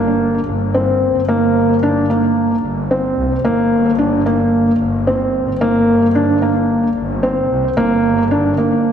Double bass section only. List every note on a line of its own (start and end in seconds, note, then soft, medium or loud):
0.00 0.40 G1 loud
0.47 1.08 G1 medium
1.15 2.57 G1 medium
2.63 3.11 G1 medium
3.17 3.36 C2 medium
3.45 4.73 G1 loud
4.79 5.40 G1 medium
5.47 6.89 G1 medium
6.96 7.43 G1 loud
7.50 7.68 C2 loud
7.77 8.92 G1 loud